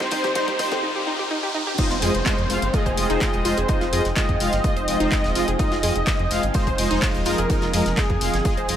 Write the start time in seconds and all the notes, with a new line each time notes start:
Already playing: C3 C4 D#4 F4 A#4, riser
0.00 C2 G4, kick, snare, closed hi-hat, high bongo
0.11 G1 G3 D#4 C5, kick, closed hi-hat, open hi-hat
0.24 C2 G4, kick, snare, closed hi-hat, high conga
0.35 G3 D#4 C5, kick, snare, closed hi-hat
0.48 G1 G4, kick, closed hi-hat
0.59 C2 G3 D#4 C5, kick, closed hi-hat, open hi-hat, high bongo
0.72 C#2 G4, kick, snare, closed hi-hat, cowbell, high conga
0.83 D#4
0.95 G4
1.07 D#4
1.19 G4
1.31 D#4
1.43 G4
1.54 D#4
1.67 G4
1.78 F3 G#3 C4 D#4 F4 G#4 C5 D#5 G5, kick, closed hi-hat, crash, downlifter
1.90 F1 F4, snare, closed hi-hat
2.02 F2 G#3 F4 G#4 D#5, closed hi-hat, open hi-hat
2.15 F1, closed hi-hat
2.26 G#3 F4 D#5, kick, snare, clap, closed hi-hat
2.38 F2, closed hi-hat
2.50 F1 G#3 F4 F5, closed hi-hat, open hi-hat
2.62 G1, closed hi-hat
2.74 G#3 F4 G#4 D#5, kick, closed hi-hat
2.86 F1 C5, kick, closed hi-hat
2.97 F1 G#3 F4 D#5, closed hi-hat, open hi-hat
3.10 F1 G#3 D#4 F4 C5, closed hi-hat
3.21 G#3 F4 D#5, kick, snare, clap, closed hi-hat
3.33 D#1, closed hi-hat
3.45 F1 G#3 F4 C5 D#5, closed hi-hat, open hi-hat
3.57 F1 G#4, closed hi-hat
3.68 G#3 D#4 F4 D#5, kick, closed hi-hat
3.81 F1 F4, snare, closed hi-hat
3.92 F2 G#3 F4 G#4 D#5, closed hi-hat, open hi-hat
4.05 F1, snare, closed hi-hat
4.16 G#3 F4 D#5, kick, snare, clap, closed hi-hat
4.29 F2, kick, closed hi-hat
4.40 F1 G#3 F4 F5, closed hi-hat, open hi-hat
4.52 G1, snare, closed hi-hat
4.64 G#3 F4 D#5, kick, closed hi-hat
4.76 F1 C5, closed hi-hat
4.88 F1 G#3 F4 D#5, closed hi-hat, open hi-hat
5.00 F1 G#3 D#4 F4 C5, closed hi-hat
5.11 G#3 F4 D#5, kick, snare, clap, closed hi-hat
5.24 D#1, snare, closed hi-hat
5.35 F1 G#3 F4 D#5, closed hi-hat, open hi-hat
5.48 F1 G#4, closed hi-hat
5.59 G#3 D#4 F4 D#5, kick, closed hi-hat
5.72 F1 F4, snare, closed hi-hat
5.83 F2 G#3 F4 G#4 D#5, closed hi-hat, open hi-hat
5.96 F1, closed hi-hat
6.07 G#3 F4 D#5, kick, snare, clap, closed hi-hat
6.19 F2, closed hi-hat
6.31 F1 G#3 F4 F5, closed hi-hat, open hi-hat
6.43 G1, closed hi-hat
6.54 G#3 F4 C5 D#5, kick, closed hi-hat
6.67 F1 C5, kick, closed hi-hat
6.78 F1 G#3 F4 D#5, closed hi-hat, open hi-hat
6.91 F1 G#3 D#4 F4 C5, closed hi-hat
7.02 G#3 F4 D#5, kick, snare, clap, closed hi-hat
7.15 D#1, closed hi-hat
7.25 F1 G#3 F4 A#4 D#5, closed hi-hat, open hi-hat
7.38 F1 G#4, closed hi-hat
7.50 G#3 D#4 F4 D#5, kick, closed hi-hat
7.62 F1 F4, snare, closed hi-hat
7.74 F2 G#3 F4 G#4 D#5, closed hi-hat, open hi-hat
7.86 F1, snare, closed hi-hat
7.97 G#3 F4 G#4 D#5, kick, snare, clap, closed hi-hat
8.10 F2, kick, closed hi-hat
8.21 F1 G#3 F4 F5, closed hi-hat, open hi-hat
8.34 G1, snare, closed hi-hat
8.45 G#3 F4 D#5, kick, closed hi-hat
8.57 F1 C5, closed hi-hat
8.68 F1 G#3 F4 D#5, closed hi-hat, open hi-hat